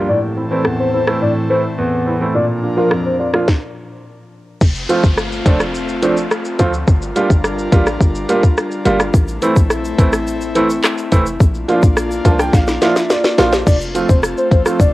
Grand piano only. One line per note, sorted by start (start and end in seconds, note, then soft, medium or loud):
0.08 0.50 A2 medium
0.36 0.42 C4 soft
0.36 0.42 E4 soft
0.51 0.62 E3 medium
0.51 0.62 A3 medium
0.51 0.62 C4 medium
0.51 0.62 E4 medium
0.65 1.07 E2 medium
0.93 0.99 C4 soft
0.93 0.99 E4 soft
1.07 1.19 E3 medium
1.07 1.19 A3 medium
1.07 1.19 C4 medium
1.07 1.19 E4 medium
1.22 1.64 A2 medium
1.50 1.61 E3 medium
1.50 1.61 A3 medium
1.50 1.61 C4 medium
1.50 1.61 E4 medium
1.78 2.20 E2 medium
2.06 2.12 C4 medium
2.06 2.12 E4 medium
2.20 2.32 E3 medium
2.20 2.32 A3 medium
2.20 2.32 C4 medium
2.20 2.32 E4 medium
2.35 2.77 A#2 medium
2.63 2.69 D4 soft
2.63 2.69 F4 soft
2.77 2.88 F3 medium
2.77 2.88 A#3 medium
2.77 2.89 D4 medium
2.77 2.89 F4 medium
2.91 3.34 F2 medium
3.19 3.25 D4 soft
3.19 3.26 F4 soft
3.34 3.45 F3 medium
3.34 3.45 A#3 medium
3.34 3.45 D4 medium
3.34 3.45 F4 medium
4.89 5.01 F3 medium
4.89 5.01 A3 medium
4.89 5.01 C4 medium
4.89 5.01 F4 medium
5.46 5.57 F3 medium
5.46 5.57 A3 medium
5.46 5.57 C4 medium
5.46 5.58 D4 loud
6.02 6.14 F3 medium
6.02 6.14 A3 medium
6.02 6.14 C4 medium
6.02 6.14 D4 medium
6.59 6.70 F3 medium
6.59 6.71 A3 medium
6.59 6.71 C4 medium
6.59 6.71 F4 loud
7.16 7.27 G3 medium
7.16 7.27 A#3 medium
7.16 7.27 D4 medium
7.16 7.27 F4 medium
7.72 7.84 G3 medium
7.72 7.84 A#3 medium
7.72 7.84 D4 medium
7.72 7.84 F4 loud
8.29 8.40 G3 medium
8.29 8.40 A#3 medium
8.29 8.40 D4 medium
8.29 8.41 F4 medium
8.85 8.97 G3 medium
8.85 8.97 A#3 medium
8.85 8.97 D4 medium
8.85 8.97 F4 loud
9.42 9.53 E3 medium
9.42 9.54 A3 medium
9.42 9.54 C4 medium
9.42 9.54 E4 loud
9.99 10.10 E3 medium
9.99 10.10 A3 medium
9.99 10.10 C4 medium
9.99 10.10 E4 loud
10.55 10.67 E3 medium
10.55 10.67 A3 medium
10.55 10.67 C4 medium
10.55 10.67 E4 loud
11.12 11.23 E3 medium
11.12 11.23 A3 medium
11.12 11.23 C4 medium
11.12 11.24 E4 loud
11.68 11.80 F3 medium
11.68 11.80 A#3 medium
11.68 11.80 D4 medium
11.68 11.80 F4 loud
12.25 12.36 F3 medium
12.25 12.37 A#3 medium
12.25 12.37 D4 medium
12.25 12.37 F4 loud
12.25 12.38 A5 medium
12.39 12.53 G5 medium
12.54 12.80 F5 medium
12.82 12.93 F3 medium
12.82 12.93 A#3 medium
12.82 12.93 D4 medium
12.82 12.93 F4 loud
12.82 13.08 E5 medium
13.10 13.37 D5 medium
13.38 13.50 F3 medium
13.38 13.50 A#3 medium
13.38 13.50 D4 medium
13.38 13.50 F4 loud
13.38 13.65 C5 medium
13.95 14.06 F3 medium
13.95 14.06 A3 medium
13.95 14.06 C4 medium
13.95 14.07 F4 medium
14.51 14.57 C4 soft
14.51 14.58 F4 soft
14.65 14.77 F3 medium
14.65 14.77 A3 medium
14.65 14.77 C4 medium
14.65 14.77 F4 medium